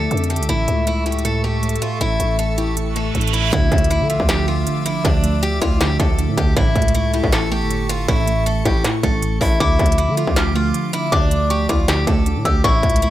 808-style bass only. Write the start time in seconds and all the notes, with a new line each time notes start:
0.11 F2
0.40 C#2
0.49 A1
0.68 C#2
2.01 A1
2.20 A1
3.15 A1
3.53 D2
3.72 D2
4.01 D3
4.20 D2
5.05 D2
5.62 D2
6.00 D2
6.29 A2
6.38 D2
6.57 A1
6.76 C#2
7.24 A1
7.62 G1
8.08 A1
8.66 A1
9.03 A1
9.41 A1
9.60 D2
9.79 D2
10.08 D3
10.27 D2
11.12 D2
11.69 D2
12.07 D2
12.36 A2
12.45 D2
12.64 A1
12.83 C#2